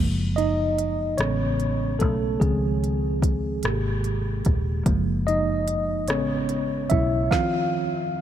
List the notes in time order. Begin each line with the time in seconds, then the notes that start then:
Already playing: F#1 F3 G#3 A#3
0.36 D#4 D#5, closed hi-hat
0.78 closed hi-hat
1.18 A1 C#3 G#3 B3 C#4 C#5, cross-stick, closed hi-hat
1.60 closed hi-hat
1.99 B1 A3 A4, kick, closed hi-hat
2.40 C#2 D#3 F3 G#3 C4 G#4, kick, closed hi-hat
2.84 closed hi-hat
3.22 kick, closed hi-hat
3.63 G#1 C3 A#3 G4, cross-stick, closed hi-hat
4.04 closed hi-hat
4.45 D#1, kick, closed hi-hat
4.86 F#1 F3 G#3 A#3, kick, closed hi-hat
5.27 D#4 D#5, closed hi-hat
5.68 closed hi-hat
6.08 A1 C#3 G#3 B3 C#4 C#5, cross-stick, closed hi-hat
6.49 closed hi-hat
6.90 B1 E4 E5, kick, closed hi-hat
7.31 D#3 F3 C4 F4 F5, kick, snare